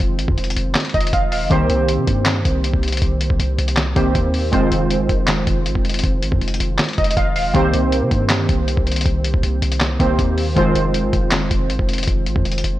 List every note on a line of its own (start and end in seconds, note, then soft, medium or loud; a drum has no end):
0.00 0.20 F1 loud
0.00 1.46 D#3 medium
0.00 1.47 G#3 medium
0.00 1.47 C4 medium
0.00 1.47 F4 medium
0.00 1.47 C5 medium
0.19 0.28 G#1 loud
0.19 closed hi-hat medium
0.28 0.37 F2 loud
0.28 kick loud
0.38 0.56 F1 loud
0.38 closed hi-hat soft
0.44 closed hi-hat medium
0.50 closed hi-hat medium
0.56 0.75 F1 loud
0.56 closed hi-hat medium
0.75 snare loud
0.75 clap loud
0.75 closed hi-hat medium
0.80 closed hi-hat medium
0.85 closed hi-hat medium
0.89 closed hi-hat soft
0.94 1.12 F1 loud
0.94 1.12 D#5 medium
0.94 kick loud
0.94 closed hi-hat soft
1.01 closed hi-hat medium
1.07 closed hi-hat medium
1.13 1.33 F1 loud
1.13 1.31 F5 medium
1.13 kick loud
1.13 closed hi-hat medium
1.32 1.43 D#1 loud
1.32 1.50 F5 medium
1.32 open hi-hat medium
1.41 1.50 F1 loud
1.50 1.69 C2 loud
1.50 3.92 D#3 medium
1.50 3.92 A#3 medium
1.50 3.92 C4 medium
1.50 3.92 G4 medium
1.50 3.93 C5 medium
1.50 kick loud
1.50 closed hi-hat medium
1.70 1.99 C2 loud
1.70 closed hi-hat medium
1.88 closed hi-hat medium
1.98 2.07 C3 medium
2.07 2.44 G2 loud
2.07 kick loud
2.07 closed hi-hat medium
2.25 snare loud
2.25 clap loud
2.25 closed hi-hat medium
2.45 2.72 C2 loud
2.45 kick loud
2.45 closed hi-hat medium
2.64 closed hi-hat medium
2.74 3.01 C2 loud
2.74 kick medium
2.83 closed hi-hat soft
2.88 closed hi-hat medium
2.92 closed hi-hat medium
2.97 closed hi-hat medium
3.02 3.29 C2 loud
3.02 kick loud
3.02 closed hi-hat medium
3.21 closed hi-hat medium
3.30 3.39 C2 loud
3.30 kick loud
3.39 3.58 C2 loud
3.39 closed hi-hat medium
3.58 3.95 C2 loud
3.58 closed hi-hat medium
3.68 closed hi-hat medium
3.76 snare loud
3.76 clap loud
3.76 closed hi-hat medium
3.96 4.14 C2 loud
3.96 4.50 D#3 medium
3.96 4.53 A#3 medium
3.96 4.52 C4 medium
3.96 4.53 G4 medium
3.96 4.53 C5 medium
3.96 kick loud
3.96 closed hi-hat medium
4.15 4.51 D#2 loud
4.15 kick loud
4.15 closed hi-hat medium
4.34 open hi-hat medium
4.52 4.71 F1 loud
4.52 7.50 D#3 medium
4.52 7.50 G#3 medium
4.52 7.51 C4 medium
4.52 7.51 F4 medium
4.52 7.51 C5 medium
4.52 kick loud
4.52 closed hi-hat medium
4.72 5.01 F1 loud
4.72 closed hi-hat medium
4.91 closed hi-hat medium
5.00 5.09 G#1 loud
5.09 5.46 F1 loud
5.09 kick loud
5.09 closed hi-hat medium
5.27 snare loud
5.27 clap loud
5.27 closed hi-hat medium
5.47 5.67 F1 loud
5.47 kick loud
5.47 closed hi-hat medium
5.66 5.75 G#1 loud
5.66 closed hi-hat medium
5.75 6.03 F1 loud
5.75 kick medium
5.85 closed hi-hat soft
5.89 closed hi-hat medium
5.94 closed hi-hat medium
5.99 closed hi-hat medium
6.04 6.24 F1 loud
6.04 kick loud
6.04 closed hi-hat medium
6.23 6.31 G#1 loud
6.23 closed hi-hat medium
6.32 6.41 F2 loud
6.32 kick loud
6.41 6.60 F1 loud
6.41 closed hi-hat soft
6.48 closed hi-hat medium
6.54 closed hi-hat medium
6.60 6.78 F1 loud
6.60 closed hi-hat medium
6.78 snare loud
6.78 clap loud
6.78 closed hi-hat medium
6.84 closed hi-hat medium
6.89 closed hi-hat medium
6.93 closed hi-hat soft
6.98 7.16 F1 loud
6.98 7.16 D#5 medium
6.98 kick loud
6.98 closed hi-hat soft
7.04 closed hi-hat medium
7.11 closed hi-hat medium
7.17 7.37 F1 loud
7.17 7.35 F5 medium
7.17 kick loud
7.17 closed hi-hat medium
7.36 7.47 D#1 loud
7.36 7.53 F5 medium
7.36 open hi-hat medium
7.45 7.54 F1 loud
7.54 7.73 C2 loud
7.54 9.95 D#3 medium
7.54 9.96 A#3 medium
7.54 9.96 C4 medium
7.54 9.96 G4 medium
7.54 9.96 C5 medium
7.54 kick loud
7.54 closed hi-hat medium
7.74 8.03 C2 loud
7.74 closed hi-hat medium
7.92 closed hi-hat medium
8.02 8.11 C3 loud
8.11 8.47 G2 loud
8.11 kick loud
8.11 closed hi-hat medium
8.29 snare loud
8.29 clap loud
8.29 closed hi-hat medium
8.49 8.76 C2 loud
8.49 kick loud
8.49 closed hi-hat medium
8.68 closed hi-hat medium
8.77 9.04 C2 loud
8.77 kick loud
8.87 closed hi-hat soft
8.92 closed hi-hat medium
8.96 closed hi-hat medium
9.01 closed hi-hat medium
9.06 9.33 C2 loud
9.06 kick loud
9.06 closed hi-hat medium
9.24 closed hi-hat medium
9.34 9.43 C2 loud
9.34 kick loud
9.43 9.61 C2 loud
9.43 closed hi-hat medium
9.62 9.98 C2 loud
9.62 closed hi-hat medium
9.72 closed hi-hat medium
9.80 snare loud
9.80 clap loud
9.80 closed hi-hat medium
9.99 10.18 C2 loud
9.99 10.54 D#3 medium
9.99 10.56 A#3 medium
9.99 10.55 C4 medium
9.99 10.57 G4 medium
9.99 10.56 C5 medium
9.99 kick loud
9.99 closed hi-hat medium
10.19 10.55 D#2 loud
10.19 kick loud
10.19 closed hi-hat medium
10.38 open hi-hat medium
10.55 10.75 F1 loud
10.55 12.79 D#3 medium
10.55 12.79 G#3 medium
10.55 12.79 C4 medium
10.55 12.79 F4 medium
10.55 12.79 C5 medium
10.55 kick loud
10.55 closed hi-hat medium
10.75 11.05 F1 loud
10.75 closed hi-hat medium
10.94 closed hi-hat medium
11.04 11.13 G#1 loud
11.13 11.49 F1 loud
11.13 kick loud
11.13 closed hi-hat medium
11.31 snare loud
11.31 clap loud
11.31 closed hi-hat medium
11.51 11.71 F1 loud
11.51 kick loud
11.51 closed hi-hat medium
11.70 11.79 G#1 loud
11.70 closed hi-hat medium
11.79 12.06 F1 loud
11.79 kick medium
11.89 closed hi-hat soft
11.93 closed hi-hat medium
11.98 closed hi-hat medium
12.03 closed hi-hat medium
12.08 12.28 F1 loud
12.08 kick loud
12.08 closed hi-hat medium
12.26 12.35 G#1 loud
12.26 closed hi-hat medium
12.36 12.45 F2 loud
12.36 kick loud
12.45 12.63 F1 loud
12.45 closed hi-hat soft
12.52 closed hi-hat medium
12.58 closed hi-hat medium
12.64 12.79 F1 loud
12.64 closed hi-hat medium